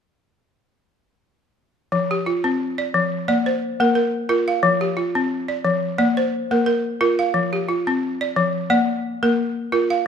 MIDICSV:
0, 0, Header, 1, 2, 480
1, 0, Start_track
1, 0, Tempo, 678733
1, 1357, Time_signature, 4, 2, 24, 8
1, 7122, End_track
2, 0, Start_track
2, 0, Title_t, "Balafon"
2, 0, Program_c, 0, 12
2, 1358, Note_on_c, 0, 53, 74
2, 1491, Note_on_c, 0, 67, 56
2, 1597, Note_off_c, 0, 53, 0
2, 1601, Note_on_c, 0, 65, 58
2, 1726, Note_on_c, 0, 60, 71
2, 1838, Note_off_c, 0, 67, 0
2, 1966, Note_off_c, 0, 60, 0
2, 1968, Note_on_c, 0, 74, 54
2, 1969, Note_off_c, 0, 65, 0
2, 2081, Note_on_c, 0, 53, 69
2, 2313, Note_off_c, 0, 74, 0
2, 2318, Note_off_c, 0, 53, 0
2, 2321, Note_on_c, 0, 58, 68
2, 2321, Note_on_c, 0, 74, 65
2, 2449, Note_on_c, 0, 72, 58
2, 2558, Note_off_c, 0, 58, 0
2, 2688, Note_off_c, 0, 74, 0
2, 2689, Note_on_c, 0, 58, 67
2, 2691, Note_on_c, 0, 70, 53
2, 2787, Note_off_c, 0, 70, 0
2, 2796, Note_on_c, 0, 70, 58
2, 2797, Note_off_c, 0, 72, 0
2, 2927, Note_off_c, 0, 58, 0
2, 3026, Note_off_c, 0, 70, 0
2, 3035, Note_on_c, 0, 70, 55
2, 3036, Note_on_c, 0, 65, 62
2, 3166, Note_on_c, 0, 77, 57
2, 3273, Note_on_c, 0, 53, 79
2, 3275, Note_off_c, 0, 65, 0
2, 3402, Note_on_c, 0, 67, 53
2, 3405, Note_off_c, 0, 70, 0
2, 3406, Note_off_c, 0, 77, 0
2, 3513, Note_on_c, 0, 65, 53
2, 3514, Note_off_c, 0, 53, 0
2, 3644, Note_on_c, 0, 60, 67
2, 3753, Note_off_c, 0, 67, 0
2, 3878, Note_on_c, 0, 74, 51
2, 3884, Note_off_c, 0, 65, 0
2, 3885, Note_off_c, 0, 60, 0
2, 3992, Note_on_c, 0, 53, 76
2, 4224, Note_off_c, 0, 74, 0
2, 4231, Note_on_c, 0, 58, 73
2, 4233, Note_off_c, 0, 53, 0
2, 4233, Note_on_c, 0, 74, 62
2, 4365, Note_on_c, 0, 72, 63
2, 4473, Note_off_c, 0, 58, 0
2, 4604, Note_off_c, 0, 74, 0
2, 4605, Note_on_c, 0, 58, 67
2, 4605, Note_on_c, 0, 70, 53
2, 4704, Note_off_c, 0, 70, 0
2, 4712, Note_on_c, 0, 70, 62
2, 4714, Note_off_c, 0, 72, 0
2, 4845, Note_off_c, 0, 58, 0
2, 4947, Note_off_c, 0, 70, 0
2, 4956, Note_on_c, 0, 65, 69
2, 4956, Note_on_c, 0, 70, 55
2, 5084, Note_on_c, 0, 77, 58
2, 5191, Note_on_c, 0, 53, 71
2, 5195, Note_off_c, 0, 65, 0
2, 5323, Note_on_c, 0, 67, 55
2, 5325, Note_off_c, 0, 70, 0
2, 5325, Note_off_c, 0, 77, 0
2, 5433, Note_off_c, 0, 53, 0
2, 5435, Note_on_c, 0, 65, 54
2, 5567, Note_on_c, 0, 60, 71
2, 5674, Note_off_c, 0, 67, 0
2, 5805, Note_off_c, 0, 65, 0
2, 5806, Note_off_c, 0, 60, 0
2, 5806, Note_on_c, 0, 74, 55
2, 5915, Note_on_c, 0, 53, 76
2, 6145, Note_off_c, 0, 74, 0
2, 6152, Note_on_c, 0, 58, 71
2, 6154, Note_on_c, 0, 74, 62
2, 6155, Note_off_c, 0, 53, 0
2, 6394, Note_off_c, 0, 58, 0
2, 6525, Note_off_c, 0, 74, 0
2, 6525, Note_on_c, 0, 70, 53
2, 6526, Note_on_c, 0, 58, 69
2, 6766, Note_off_c, 0, 58, 0
2, 6868, Note_off_c, 0, 70, 0
2, 6876, Note_on_c, 0, 65, 69
2, 6877, Note_on_c, 0, 70, 51
2, 7004, Note_on_c, 0, 77, 57
2, 7116, Note_off_c, 0, 65, 0
2, 7122, Note_off_c, 0, 70, 0
2, 7122, Note_off_c, 0, 77, 0
2, 7122, End_track
0, 0, End_of_file